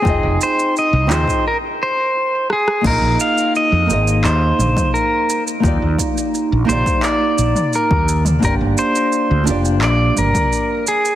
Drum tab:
CC |----------------|x---------------|----------------|----------------|
SH |x-xxx-xx--------|x-xxx-xxx-xxx-xx|x-xxx-xxx-xxx-xx|x-xxx-xxx-xxx-xx|
CP |------x---------|--------x-------|--------x-------|--------x-------|
SD |--------------rr|----------------|----------------|----------------|
T2 |------o---------|----------oo----|------o----o---o|----------oo----|
BD |o------o--------|o----------o----|o-o----o-----o--|o----------o----|